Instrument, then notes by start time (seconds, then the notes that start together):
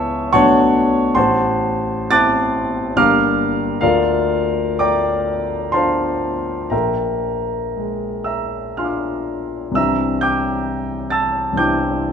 grand piano
Already playing: C#2 B3 E4 G#4 C#5 E5 G#5 A5 C#6 E6
0.33 B1 F#3 A3 B3 D4 C#5 F#5 A5 C#6
1.15 A1 C5 F#5 A5 C6
2.11 C4 E4 A5 D6 F#6 A6
2.96 G1 G3 A#3 D4 G4 F5 A#5 D6 F6
3.81 D2 F4 A#4 D5 F5
4.79 A3 D5 G5 A#5 D6
5.72 D4 F4 C5 F5 A5 C6
6.70 A#1 A#4 E5 G5 A#5
7.77 G#3
8.24 E5 A#5 E6
8.77 D4 F4 F5 G#5 C6 F6
8.84 D6 F6
9.71 C2 E3 C4 D4 E4 E6
9.76 E5 A#5
10.21 G5 D6 G6
11.10 A5 E6 A6
11.53 C2 E3 C4 D4
11.57 E4 G5 D6 G6